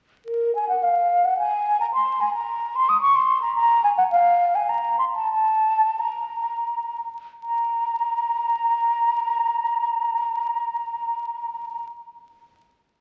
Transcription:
0.26 0.55 A#4 medium
0.55 0.68 G#5 medium
0.69 0.84 F#5 soft
0.83 1.26 F5 medium
1.25 1.38 F#5 medium
1.39 1.79 G#5 medium
1.80 1.86 A#5 medium
1.93 2.22 C6 medium
2.21 2.34 G#5 medium
2.35 2.77 A#5 medium
2.76 2.91 C6 medium
2.89 3.01 D#6 medium
3.01 3.17 C#6 loud
3.16 3.41 C6 medium
3.42 3.55 A#5 medium
3.56 3.83 A#5 loud
3.84 3.90 G#5 medium
3.98 4.04 F#5 medium
4.11 4.57 F5 medium
4.55 4.71 G#5 medium
4.69 4.98 A#5 medium
4.99 5.05 C6 medium
5.16 5.31 A5 medium
5.32 6.00 A5 medium
5.99 7.05 A#5 medium
7.42 11.85 A#5 medium

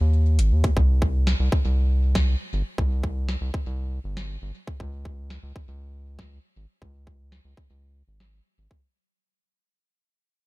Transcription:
0.01 0.40 D#2 medium
0.39 0.53 G#1 loud
0.39 closed hi-hat medium
0.51 0.70 D#2 loud
0.64 kick loud
0.64 closed hi-hat soft
0.77 1.35 C2 loud
0.77 kick loud
1.02 kick loud
1.27 snare loud
1.40 1.49 C2 medium
1.52 kick loud
1.65 2.36 C2 loud
2.15 kick loud
2.15 snare loud
2.53 2.63 G1 medium
2.78 3.36 C2 medium
2.78 kick medium
3.04 kick loud
3.29 snare loud
3.41 3.51 C2 medium
3.54 kick loud
3.66 3.99 C2 loud
4.04 4.37 G1 medium
4.17 snare loud
4.42 4.52 G1 loud
4.67 kick loud
4.80 5.38 C#2 loud
4.80 kick medium
5.05 kick loud
5.30 snare loud
5.43 5.52 C#2 medium
5.56 kick loud
5.68 6.39 C#2 loud
6.19 kick medium
6.19 snare loud
6.56 6.66 G#1 medium
6.82 7.40 C#2 loud
6.82 kick medium
7.07 kick loud
7.32 snare loud
7.45 7.54 C#2 medium
7.57 kick loud
7.70 8.03 C#2 medium
8.08 8.41 G#1 medium
8.20 snare loud
8.58 8.68 G#1 medium
8.71 kick loud

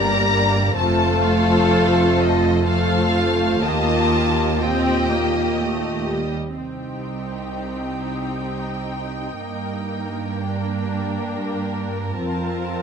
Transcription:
0.00 0.78 G1 medium
0.00 0.77 G2 medium
0.00 0.62 G3 medium
0.00 0.77 G3 medium
0.00 0.77 A#3 medium
0.00 0.62 D4 medium
0.00 0.77 A#4 medium
0.00 0.76 D5 medium
0.00 0.77 A#5 loud
0.77 3.59 F1 medium
0.77 3.59 F2 medium
0.77 2.63 A3 medium
0.77 2.63 F4 medium
0.77 2.63 A4 medium
0.77 2.63 C5 medium
0.77 1.23 A5 medium
1.24 2.19 F5 medium
2.19 2.67 D#5 medium
2.65 3.61 A3 medium
2.65 3.62 A3 medium
2.65 3.61 F4 medium
2.65 3.62 F4 medium
2.65 3.61 A4 medium
2.65 3.61 C5 medium
2.65 3.61 F5 medium
3.62 6.32 D#2 medium
3.62 6.33 D#2 medium
3.62 4.61 A#3 medium
3.62 4.63 A#3 medium
3.62 4.60 F4 medium
3.62 4.61 F4 medium
3.62 4.60 G4 medium
3.62 4.60 D#5 medium
3.62 4.62 A5 medium
4.61 6.21 A#2 medium
4.61 5.07 C4 medium
4.61 6.21 F4 medium
4.61 6.33 G4 medium
4.61 6.33 D#5 medium
4.61 5.60 G5 medium
5.10 5.59 A#3 medium
5.58 6.08 A3 medium
6.08 6.57 G3 medium
6.56 9.37 C2 soft
6.56 9.37 C4 soft
6.56 10.30 D#4 soft
6.56 9.37 G4 soft
6.56 12.16 G5 soft
9.41 12.16 G2 medium
9.41 12.17 A#3 soft
9.41 12.82 A#4 soft
10.34 12.20 D4 soft
12.19 12.82 F2 medium
12.19 12.82 C4 medium
12.19 12.82 F4 medium
12.19 12.82 A5 medium

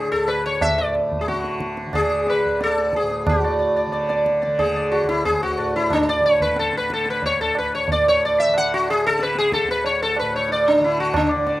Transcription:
0.00 0.11 D2 medium
0.00 0.70 A2 medium
0.00 1.29 D3 medium
0.00 0.11 G#4 medium
0.11 2.44 D2 medium
0.11 0.28 A4 medium
0.28 0.45 B4 medium
0.28 tabla na medium
0.46 0.61 C#5 medium
0.61 0.79 E5 loud
0.61 tabla na medium
0.61 tabla ge medium
0.70 3.02 A2 medium
0.78 0.93 D5 medium
0.95 tabla te medium
1.11 tabla ge medium
1.21 1.28 G#4 medium
1.28 1.86 D3 medium
1.28 1.95 F#4 medium
1.28 tabla te medium
1.44 tabla te medium
1.60 tabla ke medium
1.77 tabla te medium
1.86 3.86 D3 medium
1.93 2.29 G#4 medium
1.93 2.25 D5 soft
1.93 tabla na medium
1.93 tabla ge medium
2.27 2.61 B4 medium
2.27 2.58 D5 soft
2.27 tabla te medium
2.45 5.02 D2 medium
2.61 2.96 A4 medium
2.61 2.92 D5 soft
2.61 tabla te medium
2.78 tabla te medium
2.93 3.29 G#4 medium
2.93 tabla ke medium
3.03 3.30 A2 medium
3.10 tabla te medium
3.27 5.59 A2 medium
3.27 4.23 F#4 medium
3.27 tabla na loud
3.27 tabla ge loud
3.44 3.58 D5 soft
3.59 3.75 D5 soft
3.76 3.91 D5 soft
3.86 4.46 D3 medium
3.92 4.08 D5 soft
3.92 tabla te medium
4.09 4.40 D5 soft
4.09 tabla te medium
4.26 tabla ke medium
4.42 4.73 D5 soft
4.42 tabla te medium
4.46 6.20 D3 medium
4.59 4.90 G#4 medium
4.59 tabla tin medium
4.59 tabla ge medium
4.76 5.06 D5 soft
4.92 5.08 F#4 medium
4.92 tabla na medium
5.02 7.34 D2 medium
5.09 5.25 E4 medium
5.09 tabla ke medium
5.25 5.42 G#4 medium
5.25 tabla tin medium
5.25 tabla ge medium
5.43 5.75 F#4 medium
5.58 7.92 A2 medium
5.58 5.88 D5 soft
5.58 tabla na medium
5.76 5.92 E4 medium
5.90 6.09 D4 loud
5.90 tabla na medium
5.90 tabla ge medium
6.09 6.25 D5 loud
6.20 6.77 D3 medium
6.20 tabla te medium
6.26 6.41 C#5 medium
6.40 6.58 B4 medium
6.40 tabla ge medium
6.56 6.75 A4 medium
6.56 tabla te medium
6.73 8.48 D3 medium
6.73 tabla te medium
6.77 6.92 B4 medium
6.90 7.08 A4 medium
6.90 tabla ke medium
7.06 tabla te medium
7.10 7.25 B4 medium
7.22 7.39 C#5 loud
7.22 tabla tin medium
7.22 tabla ge medium
7.34 9.63 D2 medium
7.41 7.57 A4 loud
7.55 7.74 B4 medium
7.55 tabla na medium
7.75 7.90 C#5 medium
7.88 tabla tin medium
7.88 tabla ge medium
7.92 10.21 A2 medium
7.92 8.07 D5 medium
8.08 8.23 C#5 loud
8.25 8.40 D5 medium
8.40 8.55 E5 loud
8.48 9.07 D3 medium
8.54 8.72 F#5 loud
8.54 tabla na medium
8.74 8.88 F#4 medium
8.87 9.05 G#4 loud
8.87 tabla na medium
9.06 10.79 D3 medium
9.06 9.21 A4 loud
9.19 9.37 B4 medium
9.19 tabla te medium
9.35 9.53 G#4 loud
9.35 tabla te medium
9.52 9.69 A4 medium
9.52 tabla ke medium
9.63 11.60 D2 medium
9.69 9.85 B4 loud
9.69 tabla te medium
9.84 10.02 C#5 loud
9.84 tabla tin medium
10.02 10.18 A4 medium
10.16 10.33 B4 medium
10.16 tabla na medium
10.21 11.60 A2 medium
10.36 10.51 C#5 medium
10.49 10.67 D5 medium
10.49 tabla tin medium
10.68 10.83 D4 medium
10.79 11.35 D3 medium
10.79 tabla na medium
10.84 11.00 E4 medium
11.00 11.14 F#4 medium
11.14 11.30 D4 medium
11.14 tabla na loud
11.14 tabla ge medium
11.31 11.45 D5 soft
11.35 11.60 D3 medium
11.47 11.60 D5 soft
11.47 tabla te medium

